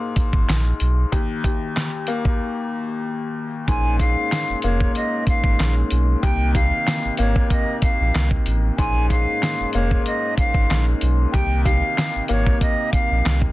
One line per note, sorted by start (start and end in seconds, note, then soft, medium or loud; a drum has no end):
0.00 1.14 G#2 medium
0.00 1.13 A#3 medium
0.16 kick loud
0.16 closed hi-hat medium
0.33 0.45 G#1 medium
0.33 kick medium
0.49 0.73 A#1 loud
0.49 snare loud
0.49 clap medium
0.49 closed hi-hat medium
0.80 1.05 B1 loud
0.80 closed hi-hat medium
1.12 1.43 D#2 medium
1.12 kick loud
1.12 closed hi-hat medium
1.44 3.68 D#2 medium
1.44 kick medium
1.44 closed hi-hat medium
1.77 snare loud
1.77 clap medium
1.77 closed hi-hat medium
2.07 3.68 A#3 medium
2.07 closed hi-hat medium
2.25 kick loud
3.67 4.16 A#1 loud
3.67 3.98 G#2 medium
3.67 6.20 G#3 medium
3.67 13.52 A#3 medium
3.67 6.20 C#4 medium
3.67 3.96 G#5 loud
3.67 kick loud
3.67 closed hi-hat loud
3.99 6.23 G#2 medium
3.99 4.59 F5 medium
3.99 kick medium
3.99 closed hi-hat medium
4.32 snare loud
4.32 clap medium
4.32 closed hi-hat medium
4.50 4.55 F1 medium
4.62 4.88 F1 medium
4.62 6.23 A#3 medium
4.62 4.92 C#5 medium
4.62 closed hi-hat medium
4.80 kick loud
4.95 5.24 D#5 medium
4.95 closed hi-hat medium
5.27 5.74 F5 medium
5.27 kick loud
5.27 closed hi-hat medium
5.44 5.55 G#1 medium
5.44 kick medium
5.60 5.84 A#1 loud
5.60 snare loud
5.60 clap medium
5.60 closed hi-hat medium
5.90 6.16 B1 loud
5.90 closed hi-hat medium
6.22 6.72 C2 loud
6.22 6.53 D#2 medium
6.22 8.75 C3 medium
6.22 8.76 D#4 medium
6.22 6.52 G5 loud
6.22 kick loud
6.22 closed hi-hat loud
6.55 8.78 D#2 medium
6.55 7.15 F5 medium
6.55 kick medium
6.55 closed hi-hat medium
6.88 snare loud
6.88 clap medium
6.88 closed hi-hat medium
7.05 7.11 G#1 medium
7.17 7.43 G#1 loud
7.17 8.78 A#3 medium
7.17 7.48 C#5 medium
7.17 closed hi-hat medium
7.36 kick loud
7.50 7.80 D#5 medium
7.50 kick loud
7.50 closed hi-hat medium
7.82 8.29 F5 medium
7.82 kick loud
7.82 closed hi-hat medium
8.01 8.11 A#1 loud
8.15 8.39 C2 loud
8.15 snare loud
8.15 clap medium
8.15 closed hi-hat medium
8.31 kick loud
8.46 8.71 A1 loud
8.46 closed hi-hat medium
8.77 9.27 A#1 loud
8.77 9.08 G#2 medium
8.77 11.32 G#3 medium
8.77 11.32 C#4 medium
8.77 9.07 G#5 loud
8.77 kick loud
8.77 closed hi-hat loud
9.10 11.34 G#2 medium
9.10 9.71 F5 medium
9.10 kick medium
9.10 closed hi-hat medium
9.43 snare loud
9.43 clap medium
9.43 closed hi-hat medium
9.61 9.66 F1 medium
9.73 9.99 F1 medium
9.73 11.34 A#3 medium
9.73 10.03 C#5 medium
9.73 closed hi-hat medium
9.91 kick loud
10.06 10.35 D#5 medium
10.06 closed hi-hat medium
10.38 10.84 F5 medium
10.38 kick loud
10.38 closed hi-hat medium
10.54 10.66 G#1 medium
10.54 kick loud
10.70 10.94 A#1 loud
10.70 snare loud
10.70 clap medium
10.70 closed hi-hat medium
11.01 11.26 B1 loud
11.01 closed hi-hat medium
11.33 11.82 C2 loud
11.33 11.64 D#2 medium
11.33 13.52 C3 medium
11.33 13.52 D#4 medium
11.33 11.62 G5 loud
11.33 kick loud
11.33 closed hi-hat loud
11.64 13.52 D#2 medium
11.64 12.25 F5 medium
11.64 kick medium
11.64 closed hi-hat medium
11.98 snare loud
11.98 clap medium
11.98 closed hi-hat medium
12.16 12.21 G#1 medium
12.28 12.54 G#1 loud
12.28 13.52 A#3 medium
12.28 12.59 C#5 loud
12.28 closed hi-hat medium
12.46 kick loud
12.61 12.90 D#5 medium
12.61 kick medium
12.61 closed hi-hat medium
12.93 13.40 F5 medium
12.93 kick loud
12.93 closed hi-hat medium
13.11 13.22 A#1 loud
13.26 13.50 C2 loud
13.26 snare loud
13.26 clap medium
13.26 closed hi-hat medium
13.42 kick loud